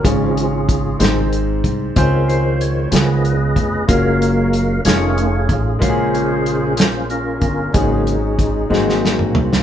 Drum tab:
HH |x-x-x-x-x-x-|x-x-x-x-x-x-|x-x-x-x-x-x-|x-x-x-x-x-x-|
SD |------o-----|------o-----|------o-----|------o-----|
T2 |------------|------------|------------|------------|
FT |------------|------------|------------|------------|
BD |o---o-----o-|o---------o-|o---------o-|o---------o-|

HH |x-x-x-------|
SD |------ooo--o|
T2 |---------o--|
FT |----------o-|
BD |o---o-------|